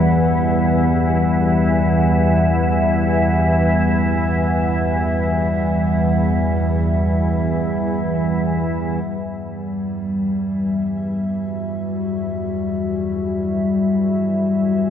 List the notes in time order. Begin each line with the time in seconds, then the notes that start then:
Already playing: E2 E3 G3 B3 B4 E5 F#5
9.06 E2 E3 G3
10.33 E5
11.36 F#4